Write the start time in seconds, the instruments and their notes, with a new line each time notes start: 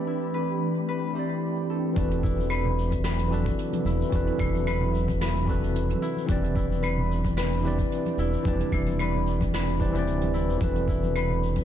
Already playing: tine electric piano E3 C4 E4 G4 B4 D5, ambient pad E3 A3 C4 D4 G4 B5, harp D4 B4
0.07 harp E4
0.34 harp B4
0.89 harp B4
1.13 tine electric piano E3 E4 G4 B5, harp C5
1.17 tine electric piano C4 D5
1.70 harp A4
1.93 analog synth bass E1, ambient pad C3, tine electric piano E3 C4 F#4, harp D4, kick, closed hi-hat, high conga
1.97 ambient pad F#3 E4, tine electric piano A4 B4, shaker
2.11 closed hi-hat
2.23 harp E4, kick, low conga, shaker
2.38 high conga, shaker
2.50 harp B4, closed hi-hat, claves, shaker
2.65 low conga
2.79 shaker
2.91 kick, closed hi-hat, high conga, shaker
3.04 harp B4, snare, closed hi-hat, shaker
3.19 closed hi-hat
3.28 tine electric piano E3 C4 F#4, high conga
3.32 harp D4, tine electric piano A4 B4, shaker
3.46 kick, closed hi-hat, shaker
3.59 closed hi-hat, shaker
3.73 closed hi-hat, high conga
3.85 analog synth bass E1, harp E4, muted conga, shaker
4.02 shaker
4.09 analog synth bass E1, tine electric piano E3 C4 F#4, kick, closed hi-hat, high conga
4.13 harp D4, tine electric piano A4 B4, shaker
4.27 closed hi-hat
4.38 analog synth bass E1, harp E4, kick, muted conga, low conga, claves, shaker
4.54 high conga, shaker
4.67 harp B4, closed hi-hat, claves, shaker
4.81 low conga
4.95 shaker
5.07 kick, closed hi-hat, high conga, low conga, shaker
5.21 harp B4, snare, closed hi-hat, shaker
5.36 closed hi-hat
5.45 tine electric piano E3 C4 F#4, harp D4, kick, high conga
5.49 tine electric piano A4 B4, shaker
5.64 closed hi-hat, shaker
5.76 closed hi-hat, shaker
5.89 closed hi-hat, high conga
6.02 harp E4, shaker
6.17 muted conga, shaker
6.26 analog synth bass E1, tine electric piano E3 E4 G4 B4, harp D4, ambient pad D4, kick, closed hi-hat, high conga
6.30 ambient pad G3, tine electric piano C4 D5, shaker
6.44 closed hi-hat
6.55 harp E4, kick, low conga, shaker
6.70 high conga, shaker
6.83 harp B4, closed hi-hat, claves, shaker
6.98 low conga
7.12 shaker
7.25 kick, closed hi-hat, high conga, shaker
7.37 harp B4, snare, closed hi-hat, shaker
7.53 closed hi-hat
7.61 tine electric piano E3 E4 G4, harp D4, high conga
7.65 tine electric piano C4 B4 D5, shaker
7.79 kick, closed hi-hat, shaker
7.92 closed hi-hat, shaker
8.06 closed hi-hat, high conga
8.18 analog synth bass E1, harp E4, muted conga, shaker
8.34 shaker
8.42 analog synth bass E1, tine electric piano E3 E4 G4 B4, kick, high conga
8.46 tine electric piano C4 D5, harp D4, closed hi-hat, shaker
8.60 closed hi-hat
8.72 analog synth bass E1, harp E4, kick, muted conga, low conga, claves, shaker
8.86 closed hi-hat, high conga, shaker
8.99 harp B4, closed hi-hat, claves, shaker
9.14 low conga
9.27 shaker
9.40 kick, closed hi-hat, high conga, low conga, shaker
9.54 harp B4, snare, closed hi-hat, shaker
9.69 closed hi-hat
9.79 tine electric piano E3 E4 G4 B4 C5 D5, harp D4, kick, high conga, shaker
9.93 tine electric piano E3 E4 G4 B4, closed hi-hat, shaker
9.97 tine electric piano C4 D5
10.06 analog synth bass D1, closed hi-hat, shaker
10.21 closed hi-hat, high conga
10.34 harp E4, shaker
10.49 analog synth bass E1, muted conga, shaker
10.58 analog synth bass E1, tine electric piano E3 C4 F#4, ambient pad F#3 E4, kick, closed hi-hat
10.62 harp D4, tine electric piano A4 B4, high conga, shaker
10.76 closed hi-hat
10.88 harp E4, kick, low conga, shaker
11.04 high conga, shaker
11.16 harp B4, closed hi-hat, claves, shaker
11.30 low conga
11.43 shaker
11.56 kick, closed hi-hat, high conga, shaker